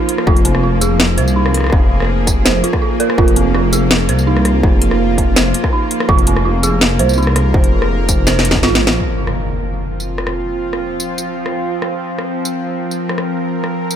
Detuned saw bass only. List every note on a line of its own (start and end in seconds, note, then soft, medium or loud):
0.27 1.20 F1 loud
1.18 1.72 C2 loud
1.72 2.62 F1 loud
3.18 4.10 F1 loud
4.09 4.62 C2 loud
4.63 5.53 F1 loud
6.09 7.01 F1 loud
7.00 7.53 C2 loud
7.54 8.65 F1 loud
8.63 8.93 G#1 loud
8.91 8.99 A#1 loud